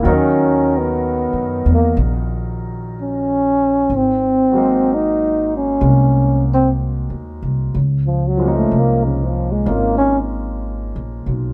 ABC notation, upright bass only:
X:1
M:4/4
L:1/8
Q:"Swing" 1/4=62
K:D#phr
V:1 name="Upright bass" clef=bass
D,,2- (3D,, F,, E,, A,,,4 | G,,,4 ^B,,,2- (3B,,, D,, B,,, | C,,2 ^B,,,2 G,,,2- (3G,,, A,,, =B,,, |]